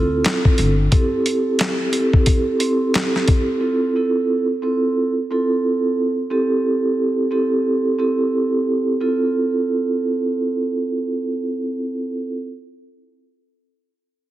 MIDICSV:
0, 0, Header, 1, 4, 480
1, 0, Start_track
1, 0, Tempo, 674157
1, 655, Time_signature, 4, 2, 24, 8
1, 10184, End_track
2, 0, Start_track
2, 0, Title_t, "Vibraphone"
2, 0, Program_c, 0, 11
2, 0, Note_on_c, 0, 60, 91
2, 0, Note_on_c, 0, 64, 82
2, 0, Note_on_c, 0, 65, 83
2, 0, Note_on_c, 0, 69, 106
2, 504, Note_off_c, 0, 60, 0
2, 505, Note_off_c, 0, 64, 0
2, 507, Note_off_c, 0, 65, 0
2, 508, Note_off_c, 0, 69, 0
2, 647, Note_on_c, 0, 60, 93
2, 650, Note_on_c, 0, 64, 85
2, 653, Note_on_c, 0, 67, 90
2, 655, Note_on_c, 0, 69, 104
2, 1326, Note_off_c, 0, 60, 0
2, 1327, Note_off_c, 0, 64, 0
2, 1328, Note_off_c, 0, 67, 0
2, 1330, Note_off_c, 0, 69, 0
2, 1364, Note_on_c, 0, 60, 89
2, 1367, Note_on_c, 0, 64, 80
2, 1369, Note_on_c, 0, 67, 83
2, 1372, Note_on_c, 0, 69, 104
2, 1819, Note_off_c, 0, 60, 0
2, 1821, Note_off_c, 0, 64, 0
2, 1822, Note_off_c, 0, 67, 0
2, 1823, Note_off_c, 0, 69, 0
2, 1846, Note_on_c, 0, 60, 97
2, 1849, Note_on_c, 0, 64, 87
2, 1852, Note_on_c, 0, 67, 83
2, 1855, Note_on_c, 0, 69, 102
2, 2525, Note_off_c, 0, 60, 0
2, 2527, Note_off_c, 0, 64, 0
2, 2528, Note_off_c, 0, 67, 0
2, 2529, Note_off_c, 0, 69, 0
2, 2563, Note_on_c, 0, 60, 95
2, 2566, Note_on_c, 0, 64, 83
2, 2569, Note_on_c, 0, 65, 91
2, 2571, Note_on_c, 0, 69, 100
2, 2794, Note_off_c, 0, 60, 0
2, 2795, Note_off_c, 0, 64, 0
2, 2797, Note_off_c, 0, 65, 0
2, 2798, Note_off_c, 0, 69, 0
2, 2817, Note_on_c, 0, 60, 88
2, 2820, Note_on_c, 0, 64, 87
2, 2822, Note_on_c, 0, 65, 82
2, 2825, Note_on_c, 0, 69, 98
2, 3166, Note_off_c, 0, 60, 0
2, 3168, Note_off_c, 0, 64, 0
2, 3169, Note_off_c, 0, 65, 0
2, 3170, Note_off_c, 0, 69, 0
2, 3290, Note_on_c, 0, 60, 85
2, 3293, Note_on_c, 0, 64, 82
2, 3296, Note_on_c, 0, 65, 77
2, 3298, Note_on_c, 0, 69, 92
2, 3643, Note_off_c, 0, 60, 0
2, 3644, Note_off_c, 0, 64, 0
2, 3646, Note_off_c, 0, 65, 0
2, 3647, Note_off_c, 0, 69, 0
2, 3778, Note_on_c, 0, 60, 90
2, 3782, Note_on_c, 0, 64, 81
2, 3784, Note_on_c, 0, 65, 80
2, 3787, Note_on_c, 0, 69, 105
2, 4344, Note_off_c, 0, 60, 0
2, 4345, Note_off_c, 0, 64, 0
2, 4347, Note_off_c, 0, 65, 0
2, 4348, Note_off_c, 0, 69, 0
2, 4487, Note_on_c, 0, 60, 95
2, 4490, Note_on_c, 0, 64, 83
2, 4492, Note_on_c, 0, 67, 89
2, 4495, Note_on_c, 0, 69, 97
2, 5166, Note_off_c, 0, 60, 0
2, 5167, Note_off_c, 0, 64, 0
2, 5168, Note_off_c, 0, 67, 0
2, 5170, Note_off_c, 0, 69, 0
2, 5203, Note_on_c, 0, 60, 85
2, 5206, Note_on_c, 0, 64, 78
2, 5209, Note_on_c, 0, 67, 76
2, 5211, Note_on_c, 0, 69, 99
2, 5659, Note_off_c, 0, 60, 0
2, 5660, Note_off_c, 0, 64, 0
2, 5662, Note_off_c, 0, 67, 0
2, 5663, Note_off_c, 0, 69, 0
2, 5686, Note_on_c, 0, 60, 93
2, 5689, Note_on_c, 0, 64, 82
2, 5691, Note_on_c, 0, 67, 82
2, 5694, Note_on_c, 0, 69, 100
2, 6365, Note_off_c, 0, 60, 0
2, 6366, Note_off_c, 0, 64, 0
2, 6368, Note_off_c, 0, 67, 0
2, 6369, Note_off_c, 0, 69, 0
2, 6411, Note_on_c, 0, 60, 83
2, 6414, Note_on_c, 0, 64, 75
2, 6416, Note_on_c, 0, 65, 75
2, 6418, Note_on_c, 0, 69, 95
2, 8819, Note_off_c, 0, 60, 0
2, 8822, Note_off_c, 0, 64, 0
2, 8824, Note_off_c, 0, 65, 0
2, 8826, Note_off_c, 0, 69, 0
2, 10184, End_track
3, 0, Start_track
3, 0, Title_t, "Upright bass"
3, 0, Program_c, 1, 32
3, 0, Note_on_c, 1, 38, 101
3, 148, Note_off_c, 1, 38, 0
3, 419, Note_on_c, 1, 31, 87
3, 613, Note_off_c, 1, 31, 0
3, 10184, End_track
4, 0, Start_track
4, 0, Title_t, "Drums"
4, 174, Note_on_c, 9, 42, 79
4, 182, Note_on_c, 9, 39, 87
4, 184, Note_on_c, 9, 38, 107
4, 245, Note_off_c, 9, 42, 0
4, 253, Note_off_c, 9, 39, 0
4, 255, Note_off_c, 9, 38, 0
4, 321, Note_on_c, 9, 36, 90
4, 392, Note_off_c, 9, 36, 0
4, 412, Note_on_c, 9, 42, 66
4, 484, Note_off_c, 9, 42, 0
4, 654, Note_on_c, 9, 42, 87
4, 656, Note_on_c, 9, 36, 106
4, 725, Note_off_c, 9, 42, 0
4, 727, Note_off_c, 9, 36, 0
4, 896, Note_on_c, 9, 42, 77
4, 967, Note_off_c, 9, 42, 0
4, 1131, Note_on_c, 9, 42, 94
4, 1143, Note_on_c, 9, 39, 89
4, 1145, Note_on_c, 9, 38, 115
4, 1202, Note_off_c, 9, 42, 0
4, 1214, Note_off_c, 9, 39, 0
4, 1216, Note_off_c, 9, 38, 0
4, 1373, Note_on_c, 9, 42, 80
4, 1444, Note_off_c, 9, 42, 0
4, 1520, Note_on_c, 9, 36, 86
4, 1591, Note_off_c, 9, 36, 0
4, 1610, Note_on_c, 9, 42, 101
4, 1615, Note_on_c, 9, 36, 91
4, 1681, Note_off_c, 9, 42, 0
4, 1687, Note_off_c, 9, 36, 0
4, 1852, Note_on_c, 9, 42, 75
4, 1923, Note_off_c, 9, 42, 0
4, 2094, Note_on_c, 9, 42, 77
4, 2102, Note_on_c, 9, 39, 87
4, 2104, Note_on_c, 9, 38, 106
4, 2166, Note_off_c, 9, 42, 0
4, 2173, Note_off_c, 9, 39, 0
4, 2175, Note_off_c, 9, 38, 0
4, 2249, Note_on_c, 9, 38, 36
4, 2321, Note_off_c, 9, 38, 0
4, 2332, Note_on_c, 9, 42, 66
4, 2337, Note_on_c, 9, 36, 91
4, 2403, Note_off_c, 9, 42, 0
4, 2408, Note_off_c, 9, 36, 0
4, 10184, End_track
0, 0, End_of_file